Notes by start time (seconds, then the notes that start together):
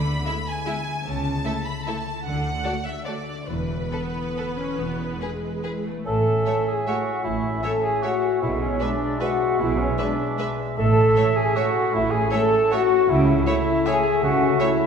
Already playing: D2 D3 G#3 D4 E4 G#4 B5
0.06 B3
0.25 G#3 E4 E5
0.47 G#4 G#5
0.66 G#3 B3 E4 E5
0.87 G#3
1.05 C#2 C#3 A5
1.25 C#4
1.44 A3 E4 A4 E5
1.66 A4 B5
1.86 A3 C#4 E4 A4 E5 A5
2.07 A3
2.25 D2 D3 F#5
2.44 A3
2.64 A3 F#4 A4 D5
2.84 A4 E5
3.05 A3 F#4 A4 D5
3.28 D4
3.48 E1 E2 E3 B4
3.70 E4
3.92 B3 A4 B4
4.15 E4
4.37 A3 A4 B4
4.58 C#4 E4
4.79 E1 E2 E3 B3
5.00 E4
5.21 G#3 G#4 B4
5.43 B4
5.63 E4 G#4 B4
5.87 A3 B3
6.05 A1 A2 C#4 A4 E5 A5
6.27 C#4
6.46 A3 C#5 E5
6.67 G#4 C#5 G#5
6.87 A3 F#4 C#5 E5 F#5
7.07 A4
7.24 A1 A2 E4 E5
7.44 C#4
7.63 A3 A4 C#5 E5 A5
7.82 G#4 C#5 G#5
8.03 A3 F#4 C#5 E5 F#5
8.24 A4
8.41 B1 B2 G#3 E4 E5
8.60 B3 C#4 C#5
8.80 G#3 D4 G#4 B4 D5 E5
9.01 B4
9.20 G#3 F#4 B4 E5 F#5
9.41 G#4
9.60 B1 B2 E4 E5
9.78 B3 C#4 C#5
9.98 G#3 D4 G#4 B4 D5 E5
10.19 B4
10.38 G#3 B4 E5
10.60 G#4
10.76 A1 A2 A3 A4 E5 A5
10.97 C#4
11.16 A3 C#5 E5
11.35 G#4 C#5 G#5
11.56 A3 F#4 C#5 E5 F#5
11.76 A4
11.92 A1 A2 E4 E5
12.11 C#4 G#4 G#5
12.31 A3 A4 C#5 E5 A5
12.71 A3 F#4 C#5 E5 F#5
13.09 C#2 C#3 A3 E4 E5
13.29 C#4
13.46 A3 E4 A4 C#5 E5
13.67 C#5
13.86 A3 G#4 C#5 E5 G#5
14.04 A4
14.22 C#2 C#3 F#4 F#5
14.40 C#4
14.59 A3 E4 A4 C#5 E5
14.80 C#5